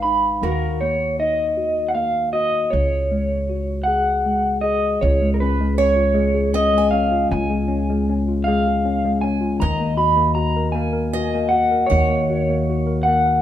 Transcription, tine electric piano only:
0.00 0.39 G#3 medium
0.00 0.05 D#4 medium
0.00 0.45 B4 soft
0.05 0.42 D#4 medium
0.42 2.68 D#3 medium
0.82 1.94 A#3 soft
1.19 2.68 D#4 soft
1.57 2.32 F#4 soft
1.95 2.69 A#3 soft
2.33 2.70 F#4 medium
2.72 4.98 C#3 medium
3.11 4.25 G#3 soft
3.49 4.98 F#4 soft
3.87 4.62 G#4 medium
4.26 5.00 G#3 soft
4.64 5.01 G#4 soft
5.02 7.27 C#3 medium
5.22 5.59 G#3 medium
5.42 5.77 C#4 medium
5.60 6.13 G#3 medium
5.78 6.52 C#4 soft
5.96 7.11 F4 medium
6.14 6.72 G#3 medium
6.34 7.84 G#4 medium
6.54 6.92 C#4 medium
6.73 7.49 G#3 medium
6.94 7.67 C#4 medium
7.12 8.27 F4 medium
7.31 9.56 C#3 medium
7.50 7.88 G#3 medium
7.68 8.08 C#4 medium
7.90 8.46 G#3 medium
8.09 8.84 C#4 soft
8.28 9.40 F4 medium
8.48 9.04 G#3 medium
8.68 9.59 G#4 medium
8.85 9.22 C#4 medium
9.05 9.60 G#3 medium
9.24 9.60 C#4 medium
9.41 9.60 F4 medium
9.60 11.85 D#3 medium
9.80 10.15 A#3 medium
9.97 10.35 F#4 medium
10.16 10.74 A#3 medium
10.36 11.14 F#4 medium
10.57 10.92 A#4 medium
10.75 11.33 A#3 medium
10.93 11.70 A#4 medium
11.15 11.52 F#4 medium
11.35 12.09 A#3 medium
11.53 12.29 F#4 medium
11.72 12.86 A#4 medium
11.90 13.42 D#3 medium
12.10 12.48 A#3 medium
12.30 12.69 F#4 medium
12.50 13.06 A#3 medium
12.70 13.42 F#4 soft
12.87 13.25 A#4 medium
13.08 13.42 A#3 medium
13.26 13.42 A#4 medium

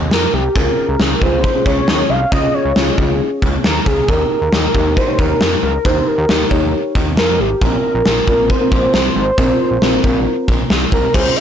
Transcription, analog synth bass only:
0.00 0.13 D#2 loud
0.12 0.27 F2 medium
0.34 0.49 C2 medium
0.56 0.71 C#2 loud
0.89 0.96 C#2 medium
1.00 1.15 C#2 loud
1.22 1.45 C#2 loud
1.66 1.81 C#2 loud
1.88 2.03 D#2 medium
2.10 2.25 C2 medium
2.32 2.47 C#2 loud
2.65 2.73 C#2 loud
2.76 2.92 C#2 loud
2.98 3.21 C#2 loud
3.42 3.58 C#2 loud
3.64 3.80 D#2 loud
3.86 4.02 C#2 medium
4.09 4.24 D#2 loud
4.42 4.49 D#2 loud
4.53 4.68 D#2 loud
4.75 4.98 D#2 loud
5.19 5.34 D#2 medium
5.41 5.56 F2 loud
5.63 5.78 C#2 medium
5.85 6.00 D#2 loud
6.18 6.26 D#2 loud
6.29 6.45 D#2 medium
6.51 6.74 D#2 loud
6.95 7.19 D#2 medium
7.17 7.41 F2 loud
7.39 7.55 G#1 loud
7.62 7.77 A#1 loud
7.95 8.02 A#1 medium
8.06 8.21 A#1 medium
8.28 8.51 A#1 loud
8.72 8.87 A#1 medium
8.94 9.09 C2 medium
9.16 9.31 G#1 medium
9.38 9.53 A#1 loud
9.71 9.79 A#1 medium
9.82 9.97 A#1 loud
10.04 10.27 A#1 loud
10.48 10.64 A#1 medium
10.70 10.86 C2 medium
10.92 11.08 C2 medium
11.14 11.30 C#2 loud

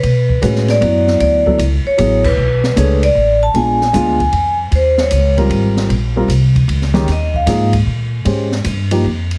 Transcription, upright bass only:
0.03 0.41 B2 medium
0.42 0.80 A2 medium
0.81 1.19 F#2 medium
1.20 1.58 D2 medium
1.58 1.83 C#2 medium
1.85 muted upright bass stroke soft
1.98 2.36 A1 loud
2.37 2.75 B1 medium
2.76 3.14 C#2 medium
3.15 3.53 A1 medium
3.54 3.92 A#1 medium
3.93 4.32 D2 medium
4.32 4.71 F2 medium
4.71 5.10 D#2 medium
5.11 5.49 C#2 medium
5.49 5.88 G#1 medium
5.89 6.27 A#1 medium
6.28 6.67 C2 medium
6.68 7.06 C#2 medium
7.07 7.46 D#2 medium
7.46 7.85 G#2 medium
7.86 8.24 A#2 medium
8.25 8.63 G#2 medium
8.64 9.03 G2 medium
9.04 9.38 F2 medium

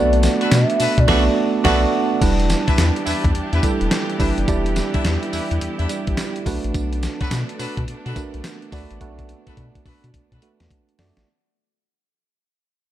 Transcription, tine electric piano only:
0.00 1.08 A3 medium
0.00 1.08 B3 medium
0.00 1.09 D4 medium
0.00 1.09 F#4 medium
0.00 2.22 B4 medium
1.08 1.29 A3 loud
1.08 1.29 B3 loud
1.08 1.29 D4 loud
1.08 1.29 F#4 loud
1.08 1.29 D5 loud
1.65 1.85 A3 loud
1.65 1.85 B3 loud
1.65 1.86 D4 loud
1.65 1.86 F#4 loud
1.65 1.86 D5 loud
2.21 3.09 G3 loud
2.21 3.10 D4 medium
2.21 3.10 E4 medium
2.21 3.10 B4 loud
3.63 4.10 G3 medium
3.63 4.10 D4 medium
3.63 4.11 E4 medium
3.63 4.11 A4 loud
4.19 4.43 G3 medium
4.19 4.43 D4 medium
4.19 4.43 E4 medium
4.19 4.44 B4 loud
4.48 5.36 G3 loud
4.48 5.36 D4 medium
4.48 5.36 E4 medium
4.48 5.36 D5 loud
5.89 6.37 G3 medium
5.89 6.37 D4 medium
5.89 6.37 E4 medium
5.89 6.37 G4 medium
6.46 7.38 A3 medium
6.46 7.38 D4 medium
6.46 7.38 F#4 medium
6.46 7.39 B4 loud
8.16 8.63 A3 medium
8.16 8.63 D4 medium
8.16 8.63 F#4 medium
8.16 8.25 A#4 medium
8.23 8.67 B4 medium
8.72 8.96 A3 medium
8.72 8.96 D4 medium
8.72 8.96 F#4 medium
8.72 8.96 D5 loud
9.01 9.89 A3 medium
9.01 9.89 D4 medium
9.01 9.89 F#4 medium
9.01 9.89 B4 loud
10.42 10.89 A3 medium
10.42 10.90 D4 medium
10.42 10.90 F#4 medium
10.42 10.90 B4 medium
10.98 11.22 A3 medium
10.98 11.22 D4 medium
10.98 11.23 F#4 medium
10.98 11.23 D5 loud

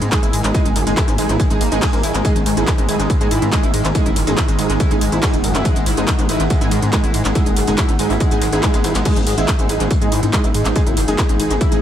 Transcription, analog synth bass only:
0.02 0.10 G#2 medium
0.23 0.31 G#1 medium
0.33 0.42 G#2 loud
0.44 0.52 G#1 medium
0.66 0.73 F#1 medium
0.76 0.84 F#1 loud
0.87 0.95 F#1 medium
1.08 1.16 G#1 medium
1.18 1.27 G#1 loud
1.29 1.37 G#1 medium
1.51 1.59 G#1 medium
1.61 1.69 G#1 loud
1.72 1.80 G#1 medium
1.93 2.01 G#1 medium
2.04 2.12 G#1 loud
2.15 2.22 G#1 medium
2.36 2.44 G#1 medium
2.46 2.54 G#1 loud
2.57 2.65 G#1 medium
2.78 2.86 G#1 medium
2.89 2.97 G#1 loud
2.99 3.07 G#1 medium
3.21 3.29 G#2 medium
3.31 3.40 G#2 loud
3.42 3.50 G#2 medium
3.63 3.71 G#1 medium
3.74 3.82 G#2 loud
3.85 3.93 G#1 medium
4.06 4.14 F#1 medium
4.16 4.25 F#1 loud
4.27 4.35 F#1 medium
4.48 4.56 G#1 medium
4.59 4.67 G#1 loud
4.70 4.78 G#1 medium
4.91 4.99 G#1 medium
5.02 5.10 G#1 loud
5.12 5.20 G#1 medium
5.34 5.42 F#1 medium
5.44 5.52 F#1 loud
5.55 5.63 F#1 loud
5.76 5.84 G#1 medium
5.87 5.95 G#1 loud
5.98 6.05 G#1 medium
6.19 6.27 G#1 medium
6.29 6.37 G#1 loud
6.40 6.48 G#1 medium
6.61 6.69 G#2 medium
6.72 6.80 G#2 loud
6.83 6.91 G#2 medium
7.04 7.12 G#1 medium
7.14 7.23 G#2 loud
7.25 7.33 G#1 loud
7.47 7.54 F#1 medium
7.57 7.65 F#1 loud
7.68 7.76 F#1 loud
7.89 7.97 G#1 medium
7.99 8.08 G#1 loud
8.10 8.18 G#1 medium
8.32 8.39 G#1 medium
8.42 8.50 G#1 loud
8.53 8.61 G#1 medium
8.74 8.82 G#1 medium
8.84 8.93 G#1 loud
8.95 9.03 G#1 medium
9.17 9.24 G#1 medium
9.27 9.35 G#1 loud
9.38 9.46 G#1 medium
9.59 9.67 G#1 medium
9.69 9.78 G#1 loud
9.80 9.88 G#1 medium
10.02 10.10 G#2 medium
10.12 10.20 G#2 loud
10.23 10.31 G#2 medium
10.44 10.52 G#1 medium
10.55 10.63 G#2 loud
10.66 10.73 G#1 medium
10.87 10.95 F#1 medium
10.97 11.06 F#1 loud
11.08 11.16 F#1 medium
11.29 11.37 G#1 medium
11.40 11.48 G#1 loud
11.51 11.59 G#1 medium
11.72 11.80 G#1 medium

